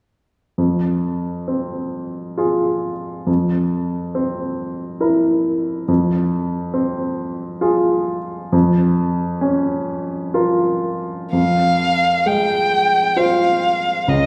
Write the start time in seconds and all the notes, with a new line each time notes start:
0.58 F2
1.48 C4
2.38 F4 G#4
3.27 F2
4.15 C4
5.00 E4 A#4
5.88 F2
6.74 C4
7.61 F4 G#4
8.52 F2
9.41 C#4
10.34 F4 A#4
11.33 F2 F5
12.26 G#3 G5
13.17 F4 C5 F5
14.08 C#2 D#5